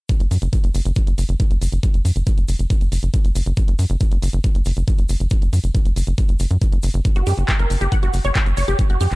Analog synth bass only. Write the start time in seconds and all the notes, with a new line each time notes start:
0.20 F#1
0.31 F#2
0.42 F#1
0.64 F#1
0.75 F#1
0.85 F#1
1.07 F#1
1.18 F#1
1.29 F#1
1.51 F#1
1.62 F#1
1.72 F#1
1.94 F#1
2.05 F#2
2.16 F#1
2.38 F#1
2.49 F#1
2.59 F#1
2.81 F#1
2.92 F#1
3.03 F#1
3.25 F#1
3.35 F#1
3.46 F#1
3.68 F#1
3.79 F#2
3.90 F#1
4.12 F#1
4.22 F#1
4.33 F#1
4.55 F#1
4.66 F#1
4.77 F#1
4.99 F#1
5.09 F#1
5.20 F#1
5.42 F#1
5.53 F#2
5.64 F#1
5.86 F#1
5.96 F#1
6.07 F#1
6.29 F#1
6.40 F#1
6.51 F#2
6.72 F#1
6.83 F#1
6.94 F#1
7.16 F#1
7.27 F#2
7.38 F#1
7.59 F#1
7.70 F#1
7.81 F#1
8.03 F#1
8.14 F#1
8.25 F#1
8.46 F#1
8.57 F#1
8.68 F#1
8.90 F#1
9.01 F#2
9.12 F#1